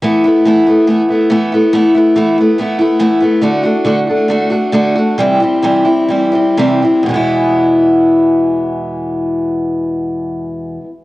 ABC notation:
X:1
M:4/4
L:1/8
Q:1/4=134
K:Emix
V:1 name="Steel-string acoustic guitar"
[E,A,B,E] [A,B,E] [E,A,B,E] [A,B,E] [E,A,B,E] [A,B,E] [E,A,B,E] [A,B,E] | [E,A,B,E] [A,B,E] [E,A,B,E] [A,B,E] [E,A,B,E] [A,B,E] [E,A,B,E] [A,B,E] | [D,A,DF] [A,DF] [D,A,DF] [A,DF] [D,A,DF] [A,DF] [D,A,DF] [A,DF] | [=C,E,=G,=CE] [G,CE] [C,E,G,CE] [G,CE] [E,G,CE] [G,CE] [C,E,G,CE] [G,CE] |
[E,,B,,E,G,B,E]8- | [E,,B,,E,G,B,E]8 |]